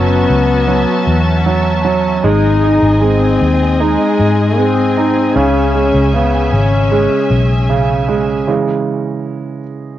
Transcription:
0.00 0.25 F#1 medium
0.00 0.68 F#3 medium
0.00 1.82 B3 medium
0.00 2.21 C#4 medium
0.00 2.21 F#4 medium
0.00 2.21 E5 medium
0.00 2.21 A5 medium
0.30 0.84 C#2 medium
0.68 1.45 F#3 medium
1.07 2.20 E2 medium
1.46 1.83 F#3 medium
1.85 2.23 F#3 medium
2.24 2.78 G#1 loud
2.24 3.00 G#3 medium
2.24 5.33 C4 medium
2.24 2.98 D#4 loud
2.24 8.43 G#4 medium
2.24 5.33 D#5 medium
2.24 8.43 G#5 medium
2.63 3.78 D#4 soft
2.82 3.37 G#1 medium
3.01 4.54 G#3 medium
3.01 3.83 C4 medium
3.41 3.95 D#2 medium
3.80 4.61 G#3 medium
3.80 4.96 D#4 soft
4.19 5.32 G#2 medium
4.58 5.33 G#3 medium
4.58 5.39 C4 loud
4.97 5.35 D#4 medium
5.36 5.90 C#2 medium
5.36 6.12 C#3 medium
5.36 8.45 C#4 medium
5.36 6.14 C#4 medium
5.36 8.45 E5 medium
5.75 6.90 G#3 soft
5.94 6.49 C#2 medium
6.14 7.66 C#3 medium
6.14 6.56 B3 medium
6.52 7.07 G#1 medium
6.52 7.70 C#4 medium
6.92 8.07 G#3 soft
7.30 8.43 B1 medium
7.70 8.45 C#3 medium
8.09 8.46 G#3 soft
8.47 9.60 C#3 soft
8.47 9.60 E3 soft
8.47 9.61 G#3 soft

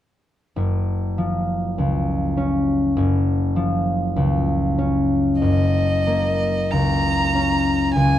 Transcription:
0.56 2.95 F#1 soft
1.18 3.55 F3 soft
1.78 3.01 C#2 soft
2.37 4.77 C#4 soft
2.97 5.41 F#1 soft
3.56 5.47 F3 soft
4.16 5.47 C#2 soft
4.78 7.34 C#4 soft
5.41 8.19 F#1 soft
5.41 6.73 D#5 soft
6.07 8.19 A#3 soft
6.71 7.95 C#2 soft
6.71 7.95 A#5 soft
7.35 8.19 C#4 soft
7.96 8.19 C#2 soft
7.96 8.19 G#5 soft

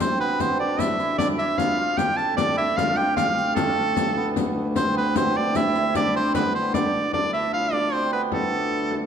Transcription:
0.00 2.37 D2 medium
0.00 3.25 A3 medium
0.00 0.26 C4 medium
0.00 0.59 D4 medium
0.00 0.85 F4 medium
0.00 1.34 G4 medium
0.00 0.19 C5 medium
0.00 riq medium
0.00 frame drum medium
0.20 0.46 B3 medium
0.20 0.42 B4 medium
0.40 4.23 C4 medium
0.40 0.59 C5 medium
0.40 riq medium
0.40 frame drum medium
0.59 1.19 D4 medium
0.59 0.81 D5 medium
0.59 frame drum soft
0.79 0.99 E4 medium
0.79 1.18 E5 medium
0.79 riq medium
0.79 frame drum medium
0.99 1.40 E4 medium
0.99 riq soft
1.18 2.38 D4 medium
1.18 1.27 D5 loud
1.18 riq medium
1.18 frame drum medium
1.38 1.65 E4 medium
1.38 1.60 E5 medium
1.38 riq soft
1.58 1.78 F4 medium
1.58 1.99 F5 loud
1.58 riq medium
1.58 frame drum medium
1.78 2.62 F4 medium
1.97 2.97 G4 medium
1.97 2.19 G5 loud
1.97 riq medium
1.97 frame drum medium
2.17 5.11 A4 medium
2.17 2.36 A5 loud
2.17 riq soft
2.17 frame drum soft
2.37 7.13 D2 medium
2.37 5.35 D4 medium
2.37 2.56 D5 loud
2.37 riq medium
2.37 frame drum medium
2.56 2.84 E4 medium
2.56 2.78 E5 loud
2.77 2.82 F4 medium
2.77 2.98 F5 loud
2.77 riq medium
2.77 frame drum medium
2.82 2.87 F4 medium
2.88 3.16 F4 medium
2.97 6.11 G4 medium
2.97 3.16 G5 medium
2.97 frame drum soft
3.16 5.63 F4 medium
3.16 3.54 F5 loud
3.16 riq medium
3.16 frame drum medium
3.38 riq soft
3.56 8.00 A3 medium
3.56 4.32 A4 medium
3.56 riq medium
3.56 frame drum loud
3.96 riq medium
3.96 frame drum medium
4.16 4.81 B3 medium
4.16 frame drum soft
4.36 riq medium
4.36 frame drum medium
4.75 5.01 C4 medium
4.75 4.95 C5 medium
4.75 riq medium
4.75 frame drum medium
4.95 5.21 B3 medium
4.95 5.15 B4 medium
5.15 6.15 C4 medium
5.15 5.38 C5 medium
5.15 riq medium
5.15 frame drum medium
5.35 5.96 D4 medium
5.35 5.58 D5 medium
5.35 frame drum soft
5.55 5.75 E4 medium
5.55 5.96 E5 loud
5.55 riq medium
5.55 frame drum medium
5.75 7.33 E4 medium
5.75 riq soft
5.95 6.75 D4 medium
5.95 6.14 D5 loud
5.95 riq medium
5.95 frame drum medium
6.15 6.42 C4 medium
6.15 6.34 C5 medium
6.35 7.99 B3 medium
6.35 6.53 B4 medium
6.35 riq medium
6.35 frame drum medium
6.55 6.73 C5 medium
6.74 7.14 D4 medium
6.74 7.11 D5 medium
6.74 riq medium
6.74 frame drum medium
6.94 frame drum soft
7.13 9.06 D2 medium
7.13 7.73 D4 medium
7.13 7.32 D5 loud
7.13 frame drum medium
7.33 7.60 E4 medium
7.33 7.52 E5 medium
7.33 frame drum soft
7.53 9.06 F4 medium
7.53 7.74 F5 loud
7.53 frame drum soft
7.72 9.06 D4 medium
7.72 7.94 D5 medium
7.72 frame drum medium
7.93 8.19 C4 medium
7.93 8.12 C5 medium
8.13 9.06 B3 medium
8.13 8.22 B4 medium
8.32 9.06 A3 medium
8.32 9.06 A4 medium
8.32 frame drum medium
8.52 frame drum soft
8.72 frame drum soft
8.91 frame drum medium

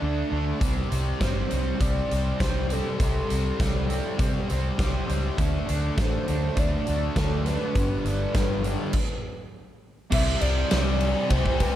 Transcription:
0.00 0.22 D2 medium
0.00 0.59 D3 medium
0.00 0.33 A3 medium
0.00 0.29 D4 medium
0.30 0.51 D2 medium
0.30 0.61 A3 medium
0.30 0.59 D4 medium
0.59 0.81 C2 medium
0.59 1.19 C3 medium
0.59 0.92 G3 medium
0.59 0.88 C4 medium
0.59 kick loud
0.59 closed hi-hat medium
0.89 1.12 C2 medium
0.89 1.21 G3 medium
0.89 1.23 C4 medium
0.89 closed hi-hat medium
1.20 1.41 G1 medium
1.20 1.78 C3 medium
1.20 1.53 G3 medium
1.20 1.49 C4 medium
1.20 1.82 C5 loud
1.20 kick loud
1.20 snare loud
1.20 closed hi-hat loud
1.50 1.71 C2 medium
1.50 1.80 G3 medium
1.50 1.81 C4 medium
1.50 closed hi-hat medium
1.78 2.01 C2 medium
1.78 2.38 C3 medium
1.78 2.12 G3 loud
1.78 2.08 C4 medium
1.78 2.39 D5 loud
1.78 kick loud
1.78 closed hi-hat medium
2.09 2.31 C2 medium
2.09 2.40 G3 medium
2.09 2.41 C4 medium
2.09 closed hi-hat medium
2.39 2.79 C2 medium
2.39 2.97 C3 medium
2.39 2.72 G3 medium
2.39 2.68 C4 medium
2.39 2.73 C5 loud
2.39 kick loud
2.39 snare loud
2.39 closed hi-hat loud
2.69 3.00 G3 medium
2.69 3.01 C4 medium
2.69 4.50 A4 medium
2.69 closed hi-hat medium
2.99 3.20 C2 medium
2.99 3.57 C3 medium
2.99 3.32 G3 medium
2.99 3.27 C4 loud
2.99 kick loud
2.99 closed hi-hat loud
3.29 3.50 C2 loud
3.29 3.59 G3 medium
3.29 3.60 C4 medium
3.29 closed hi-hat medium
3.58 3.99 C2 loud
3.58 4.16 C3 medium
3.58 3.91 G3 medium
3.58 3.87 C4 medium
3.58 kick loud
3.58 snare loud
3.58 closed hi-hat loud
3.89 4.19 G3 medium
3.89 4.20 C4 medium
3.89 closed hi-hat medium
4.18 4.76 C3 medium
4.18 4.39 C3 medium
4.18 4.51 G3 loud
4.18 4.47 C4 loud
4.18 kick loud
4.18 closed hi-hat medium
4.48 4.69 C2 medium
4.48 4.79 G3 medium
4.48 4.80 C4 medium
4.48 closed hi-hat medium
4.77 4.98 C2 medium
4.77 5.36 C3 medium
4.77 5.10 G3 medium
4.77 5.06 C4 medium
4.77 kick loud
4.77 snare loud
4.77 closed hi-hat medium
5.07 5.29 C#2 medium
5.07 5.38 G3 medium
5.07 5.36 C4 medium
5.07 closed hi-hat medium
5.37 5.58 D2 loud
5.37 5.95 D3 medium
5.37 5.70 A3 loud
5.37 5.66 D4 medium
5.37 kick loud
5.37 closed hi-hat medium
5.66 5.89 D2 loud
5.66 5.98 A3 medium
5.66 5.99 D4 medium
5.66 closed hi-hat medium
5.96 6.17 A1 medium
5.96 6.55 D3 medium
5.96 6.29 A3 medium
5.96 6.26 D4 medium
5.96 kick loud
5.96 snare loud
5.96 closed hi-hat medium
6.01 6.60 C5 loud
6.26 6.48 D2 medium
6.26 6.57 A3 medium
6.26 6.58 D4 medium
6.26 closed hi-hat medium
6.56 6.76 D2 loud
6.56 7.15 D3 medium
6.56 6.88 A3 medium
6.56 6.84 D4 loud
6.56 7.19 D5 loud
6.56 kick loud
6.56 closed hi-hat medium
6.85 7.07 D2 medium
6.85 7.17 A3 medium
6.85 7.18 D4 medium
6.85 closed hi-hat medium
7.16 7.55 D2 medium
7.16 7.74 D3 medium
7.16 7.48 A3 medium
7.16 7.45 D4 medium
7.16 7.45 A4 loud
7.16 kick loud
7.16 snare loud
7.16 closed hi-hat loud
7.46 7.76 A3 medium
7.46 7.74 D4 medium
7.46 9.20 B4 loud
7.46 snare soft
7.46 closed hi-hat medium
7.75 7.95 G1 loud
7.75 8.32 G2 medium
7.75 8.07 D3 medium
7.75 8.03 G3 medium
7.75 kick loud
7.75 closed hi-hat medium
8.04 8.24 G1 medium
8.04 8.34 D3 medium
8.04 8.36 G3 medium
8.04 closed hi-hat medium
8.34 8.74 G1 loud
8.34 8.92 G2 medium
8.34 8.65 D3 medium
8.34 8.62 G3 medium
8.34 kick loud
8.34 snare loud
8.34 closed hi-hat loud
8.63 8.93 D3 medium
8.63 8.92 G3 medium
8.63 closed hi-hat medium
8.93 kick loud
8.93 crash loud
10.11 10.33 C2 loud
10.11 10.70 C3 medium
10.11 10.72 G3 medium
10.11 10.74 C4 medium
10.11 10.42 E5 loud
10.11 kick loud
10.11 crash loud
10.40 10.62 C2 loud
10.40 11.32 D5 loud
10.40 ride medium
10.71 11.13 C2 loud
10.71 11.28 C3 medium
10.71 11.30 G3 medium
10.71 11.33 C4 medium
10.71 snare loud
10.71 ride loud
11.01 ride medium
11.30 11.72 C2 medium
11.30 11.76 C3 loud
11.30 11.61 G3 loud
11.30 11.59 C4 loud
11.30 11.62 C5 loud
11.30 kick loud
11.30 ride loud
11.46 kick medium
11.59 11.76 G3 medium
11.59 11.76 C4 medium
11.59 11.76 B4 medium
11.59 kick medium
11.59 ride medium

